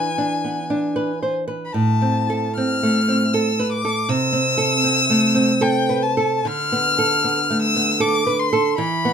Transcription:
0.00 1.70 E3 medium
0.00 0.34 B4 medium
0.00 1.30 G#5 medium
0.18 0.60 D4 medium
0.45 0.86 B3 soft
0.70 1.11 D4 medium
0.96 1.22 B4 medium
1.22 1.47 C5 medium
1.48 1.74 B4 medium
1.65 1.74 B5 medium
1.73 4.05 A2 medium
1.73 2.56 A5 medium
2.02 2.47 C4 medium
2.30 2.73 A4 medium
2.56 2.99 C4 medium
2.56 3.35 F6 loud
2.83 3.24 A3 medium
3.08 3.49 C4 medium
3.34 3.74 A4 medium
3.34 3.71 E6 medium
3.59 3.84 B4 medium
3.72 4.11 D6 medium
3.85 4.09 A4 medium
4.09 6.41 C3 medium
4.09 5.64 E6 loud
4.33 4.73 C4 medium
4.58 4.99 A4 medium
4.84 5.25 C4 medium
5.10 5.51 A3 medium
5.35 5.77 C4 medium
5.61 6.05 A4 medium
5.61 6.04 G5 loud
5.89 6.17 B4 medium
6.03 6.48 A5 medium
6.17 6.45 A4 medium
6.45 8.74 D3 medium
6.45 7.62 F6 loud
6.72 7.14 B3 medium
6.99 7.40 A4 medium
7.24 7.65 B3 medium
7.50 7.91 A3 medium
7.62 8.02 E6 loud
7.76 8.16 B3 medium
8.00 8.26 A4 medium
8.00 8.41 D6 loud
8.26 8.52 B4 medium
8.39 8.77 C6 loud
8.53 8.78 A4 medium
8.78 9.13 E3 medium
8.78 9.13 B5 loud
9.05 9.13 B3 medium

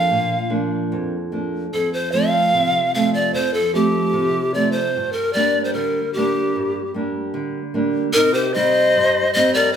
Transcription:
0.00 0.34 F3 soft
0.00 0.35 A#3 soft
0.00 0.35 D4 soft
0.00 0.53 F5 medium
0.10 0.89 A#2 medium
0.50 1.15 F3 soft
0.50 1.15 A#3 soft
0.50 1.15 D4 soft
0.92 1.70 F2 medium
1.32 1.64 F3 soft
1.32 1.64 A#3 soft
1.32 1.65 D4 soft
1.73 2.51 F2 medium
1.73 1.92 A4 medium
1.93 2.13 C5 medium
2.12 2.77 F3 soft
2.12 2.78 A3 soft
2.12 2.78 C4 medium
2.12 2.92 F5 loud
2.54 3.31 C3 medium
2.95 3.58 F3 soft
2.95 3.59 A3 soft
2.95 3.59 C4 soft
2.95 3.13 F5 medium
3.14 3.36 D5 medium
3.33 4.11 F2 medium
3.33 3.55 C5 medium
3.54 3.74 A4 medium
3.73 4.38 F3 soft
3.73 4.38 A3 soft
3.73 4.38 C4 soft
3.73 4.56 G4 medium
4.13 4.91 C3 medium
4.54 4.86 F3 soft
4.54 4.86 A3 soft
4.54 4.86 C4 soft
4.54 4.71 D5 medium
4.72 5.14 C5 medium
4.96 5.73 G2 medium
5.13 5.35 A#4 medium
5.33 5.99 G3 soft
5.33 5.99 A#3 soft
5.33 6.00 D4 soft
5.33 5.64 D5 medium
5.64 5.75 C5 medium
5.73 6.52 D3 medium
5.73 6.13 A#4 medium
6.13 6.80 G3 soft
6.13 6.80 A#3 soft
6.13 6.80 D4 soft
6.13 6.90 G4 medium
6.56 7.33 G2 medium
6.94 7.59 G3 soft
6.94 7.59 A#3 soft
6.94 7.60 D4 soft
7.34 8.12 D3 medium
7.74 8.07 G3 soft
7.74 8.06 A#3 soft
7.74 8.07 D4 soft
8.13 8.93 C3 medium
8.13 8.35 D#4 medium
8.13 8.35 A#4 loud
8.33 8.55 G4 medium
8.33 8.55 C5 medium
8.53 9.20 G3 soft
8.53 9.20 C4 soft
8.53 9.20 D#4 medium
8.53 9.33 C5 medium
8.53 9.33 D#5 loud
8.96 9.74 G2 medium
9.33 9.76 G3 soft
9.33 9.76 C4 soft
9.33 9.76 D#4 soft
9.33 9.53 C5 medium
9.33 9.53 D#5 medium
9.54 9.73 A#4 medium
9.54 9.73 D5 medium

